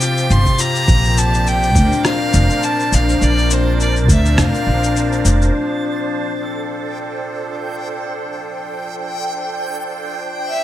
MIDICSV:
0, 0, Header, 1, 7, 480
1, 0, Start_track
1, 0, Key_signature, -1, "major"
1, 0, Tempo, 582524
1, 725, Time_signature, 4, 2, 24, 8
1, 8765, End_track
2, 0, Start_track
2, 0, Title_t, "Synth texture"
2, 0, Program_c, 0, 99
2, 0, Note_on_c, 0, 93, 72
2, 4561, Note_on_c, 0, 79, 71
2, 4575, Note_off_c, 0, 93, 0
2, 8765, Note_off_c, 0, 79, 0
2, 8765, End_track
3, 0, Start_track
3, 0, Title_t, "Violin"
3, 0, Program_c, 1, 40
3, 0, Note_on_c, 1, 79, 98
3, 258, Note_on_c, 1, 84, 99
3, 270, Note_off_c, 1, 79, 0
3, 497, Note_on_c, 1, 82, 100
3, 509, Note_off_c, 1, 84, 0
3, 971, Note_on_c, 1, 81, 98
3, 983, Note_off_c, 1, 82, 0
3, 1213, Note_on_c, 1, 79, 102
3, 1225, Note_off_c, 1, 81, 0
3, 1689, Note_off_c, 1, 79, 0
3, 1698, Note_on_c, 1, 77, 99
3, 2173, Note_on_c, 1, 81, 101
3, 2185, Note_off_c, 1, 77, 0
3, 2426, Note_on_c, 1, 77, 84
3, 2438, Note_off_c, 1, 81, 0
3, 2660, Note_on_c, 1, 74, 96
3, 2672, Note_off_c, 1, 77, 0
3, 2903, Note_on_c, 1, 72, 80
3, 2916, Note_off_c, 1, 74, 0
3, 3134, Note_off_c, 1, 72, 0
3, 3148, Note_on_c, 1, 74, 82
3, 3251, Note_off_c, 1, 74, 0
3, 3386, Note_on_c, 1, 76, 80
3, 3621, Note_on_c, 1, 77, 80
3, 3634, Note_off_c, 1, 76, 0
3, 4333, Note_off_c, 1, 77, 0
3, 8645, Note_on_c, 1, 76, 77
3, 8765, Note_off_c, 1, 76, 0
3, 8765, End_track
4, 0, Start_track
4, 0, Title_t, "Accordion"
4, 0, Program_c, 2, 21
4, 0, Note_on_c, 2, 53, 78
4, 0, Note_on_c, 2, 60, 67
4, 0, Note_on_c, 2, 67, 74
4, 0, Note_on_c, 2, 72, 71
4, 1043, Note_on_c, 2, 62, 68
4, 1337, Note_off_c, 2, 60, 0
4, 1473, Note_on_c, 2, 70, 80
4, 1636, Note_off_c, 2, 67, 0
4, 4563, Note_off_c, 2, 70, 0
4, 5284, Note_on_c, 2, 69, 56
4, 8406, Note_off_c, 2, 69, 0
4, 8765, Note_off_c, 2, 53, 0
4, 8765, Note_off_c, 2, 62, 0
4, 8765, Note_off_c, 2, 72, 0
4, 8765, End_track
5, 0, Start_track
5, 0, Title_t, "Harp"
5, 0, Program_c, 3, 46
5, 0, Note_on_c, 3, 48, 81
5, 0, Note_on_c, 3, 53, 78
5, 0, Note_on_c, 3, 60, 59
5, 0, Note_on_c, 3, 67, 67
5, 13, Note_on_c, 3, 65, 65
5, 248, Note_off_c, 3, 60, 0
5, 251, Note_on_c, 3, 60, 64
5, 322, Note_off_c, 3, 53, 0
5, 483, Note_off_c, 3, 65, 0
5, 486, Note_on_c, 3, 65, 61
5, 725, Note_on_c, 3, 46, 80
5, 730, Note_on_c, 3, 70, 69
5, 766, Note_off_c, 3, 48, 0
5, 964, Note_off_c, 3, 60, 0
5, 967, Note_on_c, 3, 60, 61
5, 1206, Note_off_c, 3, 70, 0
5, 1209, Note_on_c, 3, 70, 60
5, 1231, Note_off_c, 3, 67, 0
5, 1449, Note_on_c, 3, 62, 64
5, 1684, Note_off_c, 3, 60, 0
5, 1687, Note_on_c, 3, 60, 63
5, 1928, Note_off_c, 3, 62, 0
5, 1932, Note_on_c, 3, 62, 58
5, 2165, Note_off_c, 3, 60, 0
5, 2168, Note_on_c, 3, 60, 63
5, 2405, Note_off_c, 3, 62, 0
5, 2409, Note_on_c, 3, 62, 58
5, 2636, Note_off_c, 3, 46, 0
5, 2646, Note_on_c, 3, 46, 84
5, 2648, Note_off_c, 3, 70, 0
5, 2652, Note_on_c, 3, 70, 62
5, 2885, Note_off_c, 3, 60, 0
5, 2888, Note_on_c, 3, 60, 61
5, 3129, Note_off_c, 3, 70, 0
5, 3132, Note_on_c, 3, 70, 64
5, 3370, Note_off_c, 3, 62, 0
5, 3373, Note_on_c, 3, 62, 61
5, 3602, Note_off_c, 3, 60, 0
5, 3605, Note_on_c, 3, 60, 63
5, 3847, Note_off_c, 3, 62, 0
5, 3850, Note_on_c, 3, 62, 66
5, 4020, Note_off_c, 3, 65, 0
5, 4080, Note_off_c, 3, 60, 0
5, 4083, Note_on_c, 3, 60, 65
5, 4315, Note_off_c, 3, 62, 0
5, 4319, Note_on_c, 3, 62, 61
5, 4606, Note_off_c, 3, 46, 0
5, 4880, Note_off_c, 3, 70, 0
5, 8240, Note_off_c, 3, 62, 0
5, 8285, Note_off_c, 3, 60, 0
5, 8765, End_track
6, 0, Start_track
6, 0, Title_t, "Upright bass"
6, 0, Program_c, 4, 32
6, 247, Note_on_c, 4, 31, 86
6, 350, Note_off_c, 4, 31, 0
6, 723, Note_on_c, 4, 34, 88
6, 1445, Note_off_c, 4, 34, 0
6, 1445, Note_on_c, 4, 38, 78
6, 1549, Note_off_c, 4, 38, 0
6, 1924, Note_on_c, 4, 29, 98
6, 2028, Note_off_c, 4, 29, 0
6, 2406, Note_on_c, 4, 34, 83
6, 2598, Note_off_c, 4, 34, 0
6, 2648, Note_on_c, 4, 34, 93
6, 3365, Note_off_c, 4, 34, 0
6, 3365, Note_on_c, 4, 38, 84
6, 3600, Note_on_c, 4, 29, 85
6, 3613, Note_off_c, 4, 38, 0
6, 3706, Note_off_c, 4, 29, 0
6, 3844, Note_on_c, 4, 34, 75
6, 4286, Note_off_c, 4, 34, 0
6, 4322, Note_on_c, 4, 29, 76
6, 4515, Note_off_c, 4, 29, 0
6, 8765, End_track
7, 0, Start_track
7, 0, Title_t, "Drums"
7, 5, Note_on_c, 9, 82, 69
7, 88, Note_off_c, 9, 82, 0
7, 142, Note_on_c, 9, 82, 32
7, 225, Note_off_c, 9, 82, 0
7, 249, Note_on_c, 9, 82, 40
7, 332, Note_off_c, 9, 82, 0
7, 378, Note_on_c, 9, 36, 49
7, 380, Note_on_c, 9, 82, 22
7, 461, Note_off_c, 9, 36, 0
7, 462, Note_off_c, 9, 82, 0
7, 482, Note_on_c, 9, 82, 78
7, 565, Note_off_c, 9, 82, 0
7, 621, Note_on_c, 9, 82, 28
7, 703, Note_off_c, 9, 82, 0
7, 723, Note_on_c, 9, 36, 104
7, 726, Note_on_c, 9, 82, 40
7, 806, Note_off_c, 9, 36, 0
7, 809, Note_off_c, 9, 82, 0
7, 861, Note_on_c, 9, 82, 20
7, 944, Note_off_c, 9, 82, 0
7, 968, Note_on_c, 9, 82, 73
7, 1050, Note_off_c, 9, 82, 0
7, 1103, Note_on_c, 9, 82, 26
7, 1186, Note_off_c, 9, 82, 0
7, 1209, Note_on_c, 9, 82, 35
7, 1291, Note_off_c, 9, 82, 0
7, 1342, Note_on_c, 9, 82, 22
7, 1424, Note_off_c, 9, 82, 0
7, 1444, Note_on_c, 9, 36, 88
7, 1447, Note_on_c, 9, 82, 61
7, 1526, Note_off_c, 9, 36, 0
7, 1529, Note_off_c, 9, 82, 0
7, 1582, Note_on_c, 9, 82, 28
7, 1665, Note_off_c, 9, 82, 0
7, 1686, Note_on_c, 9, 37, 72
7, 1689, Note_on_c, 9, 82, 38
7, 1769, Note_off_c, 9, 37, 0
7, 1771, Note_off_c, 9, 82, 0
7, 1922, Note_on_c, 9, 82, 65
7, 2005, Note_off_c, 9, 82, 0
7, 2060, Note_on_c, 9, 82, 32
7, 2142, Note_off_c, 9, 82, 0
7, 2165, Note_on_c, 9, 82, 39
7, 2247, Note_off_c, 9, 82, 0
7, 2306, Note_on_c, 9, 82, 20
7, 2388, Note_off_c, 9, 82, 0
7, 2412, Note_on_c, 9, 82, 73
7, 2494, Note_off_c, 9, 82, 0
7, 2546, Note_on_c, 9, 82, 27
7, 2629, Note_off_c, 9, 82, 0
7, 2652, Note_on_c, 9, 82, 39
7, 2734, Note_off_c, 9, 82, 0
7, 2787, Note_on_c, 9, 82, 20
7, 2869, Note_off_c, 9, 82, 0
7, 2888, Note_on_c, 9, 82, 69
7, 2971, Note_off_c, 9, 82, 0
7, 3132, Note_on_c, 9, 82, 37
7, 3214, Note_off_c, 9, 82, 0
7, 3264, Note_on_c, 9, 82, 20
7, 3347, Note_off_c, 9, 82, 0
7, 3364, Note_on_c, 9, 36, 97
7, 3373, Note_on_c, 9, 82, 69
7, 3446, Note_off_c, 9, 36, 0
7, 3455, Note_off_c, 9, 82, 0
7, 3506, Note_on_c, 9, 82, 31
7, 3588, Note_off_c, 9, 82, 0
7, 3608, Note_on_c, 9, 37, 79
7, 3611, Note_on_c, 9, 82, 44
7, 3691, Note_off_c, 9, 37, 0
7, 3693, Note_off_c, 9, 82, 0
7, 3744, Note_on_c, 9, 82, 19
7, 3826, Note_off_c, 9, 82, 0
7, 3983, Note_on_c, 9, 82, 33
7, 4065, Note_off_c, 9, 82, 0
7, 4089, Note_on_c, 9, 82, 41
7, 4171, Note_off_c, 9, 82, 0
7, 4223, Note_on_c, 9, 82, 19
7, 4305, Note_off_c, 9, 82, 0
7, 4327, Note_on_c, 9, 82, 76
7, 4410, Note_off_c, 9, 82, 0
7, 4464, Note_on_c, 9, 82, 29
7, 4547, Note_off_c, 9, 82, 0
7, 8765, End_track
0, 0, End_of_file